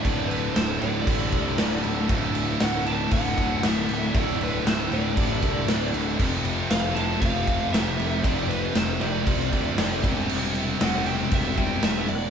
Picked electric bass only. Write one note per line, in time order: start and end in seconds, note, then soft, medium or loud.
0.05 0.49 D1 medium
0.56 0.78 D1 medium
0.81 1.04 D1 medium
1.07 1.29 A1 medium
1.32 1.55 C2 medium
1.59 1.81 D1 medium
1.85 2.07 D1 loud
2.10 2.54 D1 loud
2.61 3.06 D1 medium
3.12 3.56 D1 loud
3.63 3.85 D1 medium
3.89 4.11 D1 medium
4.15 4.59 D1 loud
4.65 4.88 D1 medium
4.91 5.13 D1 medium
5.17 5.39 A1 loud
5.43 5.65 C2 loud
5.69 5.91 D1 medium
5.94 6.16 D1 medium
6.19 6.64 F1 loud
6.71 7.15 F1 medium
7.21 7.66 F1 medium
7.73 7.95 F1 medium
7.98 8.21 F1 medium
8.24 8.69 F1 medium
8.75 8.98 F1 medium
9.01 9.23 F1 medium
9.27 9.49 C2 loud
9.52 9.75 D2 loud
9.79 10.01 F1 medium
10.03 10.26 E1 medium
10.30 10.74 E1 loud
10.81 11.25 E1 medium
11.32 11.76 E1 loud
11.83 12.06 E1 medium
12.09 12.30 E1 loud